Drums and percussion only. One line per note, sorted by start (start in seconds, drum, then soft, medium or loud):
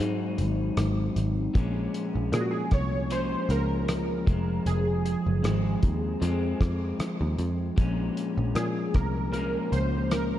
0.38 closed hi-hat medium
0.77 cross-stick medium
0.77 closed hi-hat medium
1.16 closed hi-hat soft
1.55 kick loud
1.55 closed hi-hat medium
1.94 closed hi-hat medium
2.33 cross-stick medium
2.33 closed hi-hat medium
2.71 kick medium
2.71 cross-stick medium
2.71 closed hi-hat soft
3.11 closed hi-hat medium
3.50 closed hi-hat soft
3.88 cross-stick medium
3.88 closed hi-hat medium
4.27 kick medium
4.27 closed hi-hat medium
4.66 closed hi-hat medium
5.06 closed hi-hat medium
5.44 cross-stick medium
5.44 closed hi-hat medium
5.83 kick medium
5.83 closed hi-hat soft
6.22 closed hi-hat medium
6.61 kick medium
6.61 cross-stick medium
6.61 closed hi-hat soft
7.00 cross-stick medium
7.00 closed hi-hat medium
7.39 closed hi-hat soft
7.78 kick medium
7.78 closed hi-hat medium
8.17 closed hi-hat medium
8.55 cross-stick medium
8.55 closed hi-hat medium
8.94 kick medium
8.94 cross-stick medium
8.94 closed hi-hat soft
9.34 closed hi-hat medium
9.73 closed hi-hat soft
10.11 cross-stick medium
10.11 closed hi-hat medium